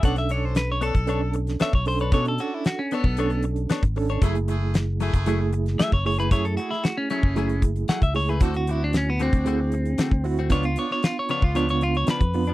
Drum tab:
HH |xxx-x-xxx-xxx-ox|xxx-x-x-xxxxxxox|xxx-x-xxx-xxx-ox|xxx-x-x-xxxxxxox|
SD |-o--o------oo---|----o-o-----o---|----o------oo---|---oo-------o---|
BD |o------o-----o--|o------o-----o--|o------o-----o--|o------o--o--o--|

HH |xxx-x-xxx-xxx-ox|xxx-x-x-xxxxxxox|
SD |----o-------o---|---oo-------o---|
BD |o------o-----o--|o------o-----o--|